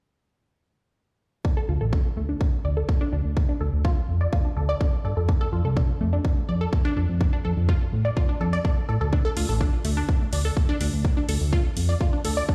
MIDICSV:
0, 0, Header, 1, 4, 480
1, 0, Start_track
1, 0, Key_signature, -1, "minor"
1, 0, Tempo, 480000
1, 1447, Time_signature, 4, 2, 24, 8
1, 12549, End_track
2, 0, Start_track
2, 0, Title_t, "Synth pluck"
2, 0, Program_c, 0, 84
2, 1448, Note_on_c, 0, 62, 80
2, 1504, Note_off_c, 0, 62, 0
2, 1570, Note_on_c, 0, 69, 96
2, 1624, Note_off_c, 0, 69, 0
2, 1687, Note_on_c, 0, 65, 73
2, 1721, Note_off_c, 0, 65, 0
2, 1809, Note_on_c, 0, 69, 72
2, 1864, Note_off_c, 0, 69, 0
2, 1927, Note_on_c, 0, 62, 78
2, 1983, Note_off_c, 0, 62, 0
2, 2167, Note_on_c, 0, 57, 70
2, 2224, Note_off_c, 0, 57, 0
2, 2289, Note_on_c, 0, 62, 73
2, 2371, Note_off_c, 0, 62, 0
2, 2647, Note_on_c, 0, 74, 74
2, 2704, Note_off_c, 0, 74, 0
2, 2769, Note_on_c, 0, 69, 72
2, 2824, Note_off_c, 0, 69, 0
2, 3009, Note_on_c, 0, 62, 97
2, 3091, Note_off_c, 0, 62, 0
2, 3126, Note_on_c, 0, 62, 71
2, 3161, Note_off_c, 0, 62, 0
2, 3489, Note_on_c, 0, 62, 74
2, 3544, Note_off_c, 0, 62, 0
2, 3606, Note_on_c, 0, 69, 71
2, 3663, Note_off_c, 0, 69, 0
2, 3846, Note_on_c, 0, 65, 97
2, 3903, Note_off_c, 0, 65, 0
2, 4208, Note_on_c, 0, 74, 74
2, 4263, Note_off_c, 0, 74, 0
2, 4326, Note_on_c, 0, 65, 82
2, 4383, Note_off_c, 0, 65, 0
2, 4448, Note_on_c, 0, 62, 73
2, 4503, Note_off_c, 0, 62, 0
2, 4566, Note_on_c, 0, 69, 74
2, 4623, Note_off_c, 0, 69, 0
2, 4688, Note_on_c, 0, 74, 97
2, 4743, Note_off_c, 0, 74, 0
2, 4806, Note_on_c, 0, 62, 78
2, 4841, Note_off_c, 0, 62, 0
2, 5046, Note_on_c, 0, 69, 74
2, 5081, Note_off_c, 0, 69, 0
2, 5168, Note_on_c, 0, 69, 68
2, 5251, Note_off_c, 0, 69, 0
2, 5286, Note_on_c, 0, 62, 78
2, 5343, Note_off_c, 0, 62, 0
2, 5408, Note_on_c, 0, 69, 99
2, 5463, Note_off_c, 0, 69, 0
2, 5526, Note_on_c, 0, 65, 73
2, 5561, Note_off_c, 0, 65, 0
2, 5649, Note_on_c, 0, 69, 73
2, 5704, Note_off_c, 0, 69, 0
2, 5767, Note_on_c, 0, 62, 76
2, 5823, Note_off_c, 0, 62, 0
2, 6006, Note_on_c, 0, 57, 71
2, 6063, Note_off_c, 0, 57, 0
2, 6128, Note_on_c, 0, 62, 73
2, 6211, Note_off_c, 0, 62, 0
2, 6486, Note_on_c, 0, 74, 73
2, 6543, Note_off_c, 0, 74, 0
2, 6609, Note_on_c, 0, 69, 74
2, 6664, Note_off_c, 0, 69, 0
2, 6849, Note_on_c, 0, 62, 99
2, 6931, Note_off_c, 0, 62, 0
2, 6966, Note_on_c, 0, 62, 72
2, 7001, Note_off_c, 0, 62, 0
2, 7328, Note_on_c, 0, 62, 75
2, 7383, Note_off_c, 0, 62, 0
2, 7446, Note_on_c, 0, 69, 71
2, 7503, Note_off_c, 0, 69, 0
2, 7687, Note_on_c, 0, 65, 97
2, 7744, Note_off_c, 0, 65, 0
2, 8049, Note_on_c, 0, 74, 71
2, 8103, Note_off_c, 0, 74, 0
2, 8167, Note_on_c, 0, 65, 82
2, 8224, Note_off_c, 0, 65, 0
2, 8289, Note_on_c, 0, 62, 73
2, 8344, Note_off_c, 0, 62, 0
2, 8407, Note_on_c, 0, 69, 74
2, 8463, Note_off_c, 0, 69, 0
2, 8529, Note_on_c, 0, 74, 97
2, 8584, Note_off_c, 0, 74, 0
2, 8647, Note_on_c, 0, 62, 76
2, 8681, Note_off_c, 0, 62, 0
2, 8886, Note_on_c, 0, 69, 70
2, 8921, Note_off_c, 0, 69, 0
2, 9009, Note_on_c, 0, 69, 72
2, 9091, Note_off_c, 0, 69, 0
2, 9127, Note_on_c, 0, 62, 81
2, 9184, Note_off_c, 0, 62, 0
2, 9249, Note_on_c, 0, 69, 103
2, 9304, Note_off_c, 0, 69, 0
2, 9367, Note_on_c, 0, 65, 72
2, 9401, Note_off_c, 0, 65, 0
2, 9490, Note_on_c, 0, 69, 72
2, 9544, Note_off_c, 0, 69, 0
2, 9608, Note_on_c, 0, 62, 80
2, 9664, Note_off_c, 0, 62, 0
2, 9847, Note_on_c, 0, 57, 71
2, 9904, Note_off_c, 0, 57, 0
2, 9970, Note_on_c, 0, 62, 74
2, 10051, Note_off_c, 0, 62, 0
2, 10328, Note_on_c, 0, 74, 74
2, 10384, Note_off_c, 0, 74, 0
2, 10450, Note_on_c, 0, 69, 77
2, 10504, Note_off_c, 0, 69, 0
2, 10689, Note_on_c, 0, 62, 97
2, 10771, Note_off_c, 0, 62, 0
2, 10807, Note_on_c, 0, 62, 74
2, 10841, Note_off_c, 0, 62, 0
2, 11170, Note_on_c, 0, 62, 77
2, 11224, Note_off_c, 0, 62, 0
2, 11288, Note_on_c, 0, 69, 75
2, 11344, Note_off_c, 0, 69, 0
2, 11528, Note_on_c, 0, 65, 99
2, 11584, Note_off_c, 0, 65, 0
2, 11889, Note_on_c, 0, 74, 74
2, 11944, Note_off_c, 0, 74, 0
2, 12007, Note_on_c, 0, 65, 82
2, 12064, Note_off_c, 0, 65, 0
2, 12129, Note_on_c, 0, 62, 71
2, 12184, Note_off_c, 0, 62, 0
2, 12247, Note_on_c, 0, 69, 74
2, 12304, Note_off_c, 0, 69, 0
2, 12370, Note_on_c, 0, 74, 97
2, 12424, Note_off_c, 0, 74, 0
2, 12487, Note_on_c, 0, 62, 79
2, 12521, Note_off_c, 0, 62, 0
2, 12549, End_track
3, 0, Start_track
3, 0, Title_t, "Analog synth bass"
3, 0, Program_c, 1, 38
3, 1688, Note_on_c, 1, 38, 98
3, 1781, Note_off_c, 1, 38, 0
3, 1810, Note_on_c, 1, 33, 83
3, 1993, Note_off_c, 1, 33, 0
3, 2168, Note_on_c, 1, 38, 79
3, 2353, Note_off_c, 1, 38, 0
3, 2648, Note_on_c, 1, 38, 87
3, 2832, Note_off_c, 1, 38, 0
3, 3127, Note_on_c, 1, 38, 98
3, 3221, Note_off_c, 1, 38, 0
3, 3250, Note_on_c, 1, 38, 90
3, 3432, Note_off_c, 1, 38, 0
3, 3607, Note_on_c, 1, 38, 84
3, 3701, Note_off_c, 1, 38, 0
3, 3729, Note_on_c, 1, 38, 100
3, 3912, Note_off_c, 1, 38, 0
3, 4087, Note_on_c, 1, 41, 81
3, 4272, Note_off_c, 1, 41, 0
3, 4567, Note_on_c, 1, 38, 87
3, 4752, Note_off_c, 1, 38, 0
3, 5047, Note_on_c, 1, 43, 77
3, 5140, Note_off_c, 1, 43, 0
3, 5169, Note_on_c, 1, 41, 77
3, 5352, Note_off_c, 1, 41, 0
3, 5526, Note_on_c, 1, 41, 92
3, 5620, Note_off_c, 1, 41, 0
3, 5648, Note_on_c, 1, 36, 85
3, 5832, Note_off_c, 1, 36, 0
3, 6006, Note_on_c, 1, 41, 82
3, 6192, Note_off_c, 1, 41, 0
3, 6487, Note_on_c, 1, 41, 83
3, 6672, Note_off_c, 1, 41, 0
3, 6967, Note_on_c, 1, 41, 98
3, 7061, Note_off_c, 1, 41, 0
3, 7089, Note_on_c, 1, 41, 91
3, 7272, Note_off_c, 1, 41, 0
3, 7447, Note_on_c, 1, 41, 80
3, 7541, Note_off_c, 1, 41, 0
3, 7568, Note_on_c, 1, 41, 99
3, 7752, Note_off_c, 1, 41, 0
3, 7927, Note_on_c, 1, 45, 80
3, 8112, Note_off_c, 1, 45, 0
3, 8407, Note_on_c, 1, 41, 85
3, 8592, Note_off_c, 1, 41, 0
3, 8887, Note_on_c, 1, 45, 77
3, 8981, Note_off_c, 1, 45, 0
3, 9009, Note_on_c, 1, 38, 76
3, 9192, Note_off_c, 1, 38, 0
3, 9367, Note_on_c, 1, 38, 96
3, 9461, Note_off_c, 1, 38, 0
3, 9489, Note_on_c, 1, 33, 84
3, 9672, Note_off_c, 1, 33, 0
3, 9847, Note_on_c, 1, 38, 86
3, 10032, Note_off_c, 1, 38, 0
3, 10327, Note_on_c, 1, 38, 85
3, 10512, Note_off_c, 1, 38, 0
3, 10807, Note_on_c, 1, 38, 96
3, 10900, Note_off_c, 1, 38, 0
3, 10929, Note_on_c, 1, 38, 90
3, 11112, Note_off_c, 1, 38, 0
3, 11287, Note_on_c, 1, 38, 82
3, 11380, Note_off_c, 1, 38, 0
3, 11409, Note_on_c, 1, 38, 100
3, 11592, Note_off_c, 1, 38, 0
3, 11767, Note_on_c, 1, 41, 81
3, 11952, Note_off_c, 1, 41, 0
3, 12247, Note_on_c, 1, 38, 83
3, 12432, Note_off_c, 1, 38, 0
3, 12549, End_track
4, 0, Start_track
4, 0, Title_t, "Drums"
4, 1447, Note_on_c, 9, 36, 104
4, 1547, Note_off_c, 9, 36, 0
4, 1927, Note_on_c, 9, 36, 106
4, 2027, Note_off_c, 9, 36, 0
4, 2407, Note_on_c, 9, 36, 102
4, 2507, Note_off_c, 9, 36, 0
4, 2887, Note_on_c, 9, 36, 107
4, 2987, Note_off_c, 9, 36, 0
4, 3367, Note_on_c, 9, 36, 106
4, 3467, Note_off_c, 9, 36, 0
4, 3847, Note_on_c, 9, 36, 112
4, 3947, Note_off_c, 9, 36, 0
4, 4327, Note_on_c, 9, 36, 106
4, 4427, Note_off_c, 9, 36, 0
4, 4806, Note_on_c, 9, 36, 116
4, 4906, Note_off_c, 9, 36, 0
4, 5286, Note_on_c, 9, 36, 113
4, 5386, Note_off_c, 9, 36, 0
4, 5766, Note_on_c, 9, 36, 116
4, 5866, Note_off_c, 9, 36, 0
4, 6246, Note_on_c, 9, 36, 109
4, 6346, Note_off_c, 9, 36, 0
4, 6727, Note_on_c, 9, 36, 115
4, 6827, Note_off_c, 9, 36, 0
4, 7207, Note_on_c, 9, 36, 110
4, 7307, Note_off_c, 9, 36, 0
4, 7687, Note_on_c, 9, 36, 112
4, 7787, Note_off_c, 9, 36, 0
4, 8167, Note_on_c, 9, 36, 109
4, 8267, Note_off_c, 9, 36, 0
4, 8647, Note_on_c, 9, 36, 112
4, 8747, Note_off_c, 9, 36, 0
4, 9127, Note_on_c, 9, 36, 108
4, 9227, Note_off_c, 9, 36, 0
4, 9367, Note_on_c, 9, 46, 97
4, 9467, Note_off_c, 9, 46, 0
4, 9607, Note_on_c, 9, 36, 115
4, 9707, Note_off_c, 9, 36, 0
4, 9846, Note_on_c, 9, 46, 98
4, 9946, Note_off_c, 9, 46, 0
4, 10087, Note_on_c, 9, 36, 108
4, 10187, Note_off_c, 9, 36, 0
4, 10326, Note_on_c, 9, 46, 100
4, 10426, Note_off_c, 9, 46, 0
4, 10567, Note_on_c, 9, 36, 110
4, 10667, Note_off_c, 9, 36, 0
4, 10806, Note_on_c, 9, 46, 97
4, 10906, Note_off_c, 9, 46, 0
4, 11047, Note_on_c, 9, 36, 105
4, 11147, Note_off_c, 9, 36, 0
4, 11286, Note_on_c, 9, 46, 94
4, 11386, Note_off_c, 9, 46, 0
4, 11526, Note_on_c, 9, 36, 108
4, 11626, Note_off_c, 9, 36, 0
4, 11766, Note_on_c, 9, 46, 96
4, 11866, Note_off_c, 9, 46, 0
4, 12006, Note_on_c, 9, 36, 102
4, 12106, Note_off_c, 9, 36, 0
4, 12246, Note_on_c, 9, 46, 97
4, 12346, Note_off_c, 9, 46, 0
4, 12487, Note_on_c, 9, 36, 109
4, 12549, Note_off_c, 9, 36, 0
4, 12549, End_track
0, 0, End_of_file